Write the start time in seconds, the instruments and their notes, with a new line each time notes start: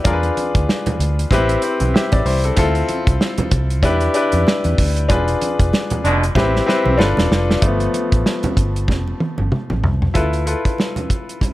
0.04 fingered electric bass E2, grand piano D4 F4 G#4 A#4, kick, closed hi-hat, low conga
0.13 grand piano B4
0.23 closed hi-hat, muted conga
0.37 closed hi-hat, high conga
0.55 fingered electric bass D2, kick, closed hi-hat
0.69 snare
0.86 muted fingered electric bass stroke, closed hi-hat, high conga, low conga
0.99 fingered electric bass D2, closed hi-hat
1.19 closed hi-hat
1.31 fingered electric bass A1, grand piano C4 E4 G4 B4, kick, closed hi-hat, muted conga, low conga
1.49 closed hi-hat
1.62 grand piano E4 C5, closed hi-hat
1.80 fingered electric bass B1, closed hi-hat, high conga
1.94 grand piano G4 E5, snare
2.12 fingered electric bass A1, grand piano D5, kick, closed hi-hat, muted conga, high conga
2.26 fingered electric bass C2, grand piano E4 C5, open hi-hat
2.44 grand piano C4 A4, closed hi-hat
2.56 fingered electric bass D2, grand piano C4 E4 F4 A4, kick, closed hi-hat, low conga
2.75 closed hi-hat
2.89 closed hi-hat, high conga
3.07 fingered electric bass C2, kick, closed hi-hat
3.21 snare
3.38 muted fingered electric bass stroke, closed hi-hat, high conga, low conga
3.51 fingered electric bass C2, kick, closed hi-hat
3.70 closed hi-hat
3.83 fingered electric bass E2, grand piano D4 E4 G4 B4, kick, closed hi-hat, low conga
4.01 closed hi-hat, muted conga
4.14 grand piano D4 E4 G4 B4, closed hi-hat
4.32 fingered electric bass F2, closed hi-hat, high conga
4.47 snare, muted conga
4.64 fingered electric bass E2, closed hi-hat, high conga
4.78 fingered electric bass D2, kick, open hi-hat
4.97 closed hi-hat
5.09 fingered electric bass E1, grand piano D4 F4 G#4 B4, kick, closed hi-hat, low conga
5.28 closed hi-hat
5.42 closed hi-hat, high conga
5.60 fingered electric bass F1, kick, closed hi-hat
5.73 snare, muted conga
5.90 muted fingered electric bass stroke, closed hi-hat, high conga, low conga
6.04 fingered electric bass F1, trombone section B2 G#3 D4, closed hi-hat
6.23 closed hi-hat
6.35 fingered electric bass A1, grand piano C4 E4 G4 B4, kick, snare, low conga
6.56 snare
6.66 grand piano C4 E4 G4 B4, snare
6.86 fingered electric bass B1, high conga
6.97 fingered electric bass G1, grand piano D4 F4 A4 B4, snare, muted conga
7.17 fingered electric bass E1, snare, high conga
7.31 fingered electric bass F1, snare
7.51 snare
7.61 fingered electric bass G1, grand piano F3 A3 B3, kick, closed hi-hat, muted conga
7.80 closed hi-hat
7.94 closed hi-hat, high conga
8.12 fingered electric bass A1, kick, closed hi-hat
8.26 snare
8.43 muted fingered electric bass stroke, closed hi-hat, muted conga, high conga, low conga
8.57 fingered electric bass G1, kick, closed hi-hat
8.76 closed hi-hat
8.88 fingered electric bass F1, kick, snare, muted conga, low conga
9.07 muted conga
9.20 high tom
9.38 fingered electric bass G1, high conga
9.52 mid tom
9.70 fingered electric bass A1, mid tom, high conga
9.83 fingered electric bass C2, floor tom
10.02 floor tom
10.14 fingered electric bass D2, grand piano E4 F4 A4 B4, kick, closed hi-hat, low conga
10.33 closed hi-hat, muted conga
10.46 grand piano E4 F4 A4 B4, closed hi-hat
10.65 kick, closed hi-hat
10.78 snare, muted conga
10.96 closed hi-hat, high conga, low conga
11.10 kick, closed hi-hat
11.29 closed hi-hat
11.41 kick, closed hi-hat, muted conga, low conga